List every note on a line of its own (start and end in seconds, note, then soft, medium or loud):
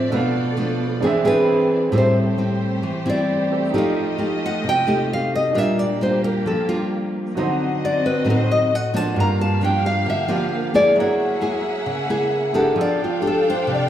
0.00 0.10 D4 soft
0.00 0.13 C5 medium
0.00 0.14 C5 soft
0.00 1.89 D5 medium
0.00 0.14 E5 medium
0.10 1.00 B2 medium
0.10 0.53 F3 medium
0.10 0.54 A3 soft
0.10 1.01 B3 medium
0.10 0.99 D4 medium
0.10 0.54 D4 medium
0.10 1.00 A4 medium
0.10 1.01 A4 medium
0.10 1.01 B4 soft
0.16 1.02 F5 medium
0.57 1.00 F3 medium
0.57 1.00 A3 medium
0.57 1.01 D4 medium
1.00 1.90 E3 medium
1.00 1.91 C4 medium
1.00 1.15 C4 medium
1.00 1.90 D4 medium
1.00 1.16 D4 medium
1.00 1.91 E4 medium
1.00 1.91 G#4 medium
1.00 1.16 G#4 medium
1.04 1.89 C4 medium
1.04 1.93 E5 medium
1.25 1.89 C4 medium
1.25 1.89 D4 medium
1.25 1.89 G#4 medium
1.25 1.90 B4 medium
1.91 2.80 A2 medium
1.91 2.34 G3 medium
1.91 5.50 A3 medium
1.91 3.47 C4 medium
1.91 2.34 C4 medium
1.91 2.34 E4 medium
1.91 5.50 G4 medium
1.91 3.48 G4 soft
1.91 3.71 C5 medium
1.95 3.49 A4 soft
1.95 2.17 C5 medium
1.95 3.50 E5 medium
2.38 2.83 G3 soft
2.38 2.83 C4 soft
2.38 2.83 E4 medium
2.83 3.71 E3 medium
3.06 3.70 G3 medium
3.06 3.70 C4 medium
3.06 3.70 E4 medium
3.06 3.71 D5 medium
3.50 3.73 C4 soft
3.50 3.71 G4 soft
3.50 3.73 A4 soft
3.50 3.74 G5 soft
3.71 4.62 F3 medium
3.71 4.15 A3 medium
3.71 5.49 D#4 soft
3.71 4.15 D#4 medium
3.71 5.50 G4 soft
3.75 5.53 F4 medium
3.75 4.16 G4 medium
3.75 5.51 A4 soft
3.75 5.53 D#5 medium
3.75 3.90 D#5 medium
3.75 5.52 F5 medium
4.18 4.63 A3 medium
4.18 4.64 D#4 soft
4.18 4.64 G4 medium
4.46 4.65 F#5 loud
4.64 5.52 C3 medium
4.69 5.09 G5 loud
4.87 5.51 A3 medium
4.87 5.51 D#4 medium
4.87 5.51 G4 medium
5.13 5.33 F5 loud
5.35 5.58 D#5 medium
5.51 6.43 A#2 medium
5.51 7.33 A#3 medium
5.51 7.30 D4 medium
5.51 7.31 G4 soft
5.51 7.33 G4 medium
5.51 7.32 A#4 soft
5.55 5.84 G3 medium
5.55 5.84 D4 medium
5.55 5.84 F4 medium
5.55 5.79 E5 medium
5.55 7.33 F5 medium
5.79 6.00 D5 medium
6.01 6.45 G3 soft
6.01 6.45 D4 medium
6.01 6.46 F4 soft
6.01 6.23 C5 medium
6.24 6.45 A#4 medium
6.46 7.33 F3 medium
6.46 6.68 A4 medium
6.69 7.32 G3 medium
6.69 7.32 D4 medium
6.69 6.82 F4 medium
6.69 7.32 F4 medium
7.35 8.24 D3 medium
7.35 7.97 F#3 medium
7.35 9.14 C4 medium
7.35 7.97 C4 medium
7.35 7.97 D#4 medium
7.35 9.14 F#4 medium
7.35 8.90 F#4 medium
7.35 8.91 C5 medium
7.35 9.14 D#5 medium
7.40 8.92 D#5 medium
7.85 8.04 D5 medium
8.06 8.26 B4 medium
8.25 9.13 A2 medium
8.25 8.70 F#3 medium
8.25 8.70 C4 medium
8.25 8.70 D#4 medium
8.30 8.50 C5 medium
8.51 8.75 D#5 medium
8.75 8.96 F#5 medium
8.93 9.58 F3 medium
8.93 9.57 A#3 medium
8.93 9.12 D4 soft
8.93 9.58 D4 medium
8.93 9.16 F#4 soft
8.93 9.17 C5 soft
8.93 9.17 F#5 soft
8.93 9.17 A5 medium
9.14 10.04 G2 medium
9.14 12.73 A#3 medium
9.14 10.25 D4 soft
9.14 10.26 G4 soft
9.14 10.95 G4 medium
9.14 10.94 F5 medium
9.18 10.28 A#4 soft
9.18 10.29 F5 medium
9.18 9.40 A#5 loud
9.41 9.62 A5 medium
9.61 10.25 F3 soft
9.61 10.26 A#3 soft
9.61 10.26 D4 medium
9.61 9.85 G5 medium
9.86 10.07 F5 medium
10.06 10.94 D3 medium
10.06 10.30 E5 medium
10.28 10.70 F3 medium
10.28 10.70 A#3 medium
10.28 10.96 D4 soft
10.28 10.71 D4 medium
10.28 10.97 G4 soft
10.28 10.55 G4 soft
10.28 10.96 A#4 soft
10.28 10.97 D5 soft
10.55 10.75 A#4 medium
10.74 11.38 A#3 medium
10.74 11.38 E4 medium
10.74 11.38 G#4 medium
10.74 10.96 D5 loud
10.94 11.84 F#3 medium
10.94 12.50 E4 soft
10.94 12.51 G#4 soft
10.94 12.75 G#4 medium
10.94 12.52 A#4 soft
10.94 12.76 F#5 medium
10.98 11.84 C#5 medium
10.98 12.76 E5 medium
10.98 12.53 F#5 medium
11.41 12.05 A#3 soft
11.41 12.05 E4 medium
11.41 12.06 G#4 medium
11.86 12.74 C#3 medium
12.10 12.51 A#3 medium
12.10 12.51 E4 medium
12.10 12.51 G#4 medium
12.53 13.18 D4 medium
12.53 12.76 E4 soft
12.53 13.19 G4 medium
12.53 12.77 G#4 soft
12.53 13.19 A4 medium
12.53 12.77 A#4 soft
12.53 12.78 F#5 medium
12.74 13.64 F3 medium
12.74 13.89 D4 medium
12.74 13.89 G4 soft
12.74 13.89 A4 medium
12.74 13.89 F5 medium
12.74 13.89 G5 medium
12.79 13.89 A4 medium
12.79 13.01 D5 medium
12.79 13.89 F5 medium
13.04 13.24 F4 medium
13.22 13.67 D4 medium
13.22 13.67 G4 medium
13.22 13.67 A4 medium
13.27 13.47 A4 medium
13.50 13.69 C5 medium
13.67 13.89 C3 medium
13.74 13.85 D5 medium